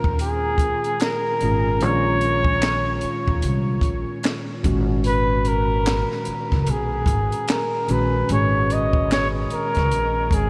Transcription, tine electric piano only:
Already playing: A#2 D#3 G#3 C#4 F4
1.41 A#2 D#3 G#3 C#4 F4
1.81 A#2 D#3 G#3 C#4 F4
4.63 A#2 D#3 G#3 C#4 F#4
7.88 A#2 D#3 G#3 C#4 F#4
8.29 A#2 D#3 G#3 C#4 G#4

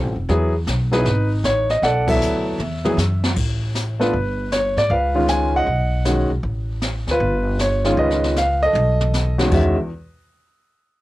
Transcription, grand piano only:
Already playing: G3 C4 F4 A4
0.29 F#3 B3 E4 G#4
0.92 F#3 B3 D#4 E4 G#4 B4
1.45 C#5
1.71 D#5
1.83 A4 D5 F#5
2.07 F#3 B3 E4 A4 E5
2.85 F#3 B3 E4 G#4
4.00 A3 B3 D4 F4 B4
4.52 C#5
4.78 D5
4.91 B4 F5
5.15 D#3 G#3 C#4 F4
5.29 G#5
5.56 D#5 F#5
6.06 D#3 G#3 C#4 F#4
7.11 F4 B4
7.61 C#5
7.85 D#3 G#3 C#4 F4
7.99 B4 D#5
8.38 F5
8.63 A4 D#5
9.38 E2 D#3 G#3 C#4 F#4
9.51 D#3 G#3 C#4 F#4 E5

